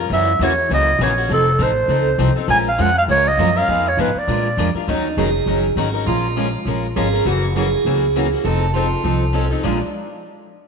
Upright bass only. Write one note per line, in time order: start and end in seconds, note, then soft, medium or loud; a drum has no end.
0.10 0.39 F#2 medium
0.39 0.69 E2 medium
0.69 0.98 C#2 medium
0.99 1.28 A#1 medium
1.29 1.58 F1 medium
1.59 1.87 A1 medium
1.88 2.18 C#2 medium
2.18 2.34 C2 medium
2.35 muted upright bass stroke soft
2.48 2.77 A#1 medium
2.79 3.08 F2 medium
3.08 3.37 C#2 medium
3.37 3.67 F#2 medium
3.68 3.97 F2 medium
3.97 4.14 G#2 medium
4.15 muted upright bass stroke soft
4.28 4.56 A#2 medium
4.57 4.73 F2 medium
4.74 muted upright bass stroke soft
4.88 5.11 D#2 medium
5.17 5.42 F1 medium
5.46 5.72 F#1 medium
5.76 6.01 G#1 medium
6.06 6.54 A#1 medium
6.65 6.91 A#1 medium
6.96 7.21 G#1 medium
7.25 7.73 F#1 medium
7.85 8.33 C#2 medium
8.44 8.92 F1 medium
9.04 9.52 C2 medium
9.64 9.80 A#1 medium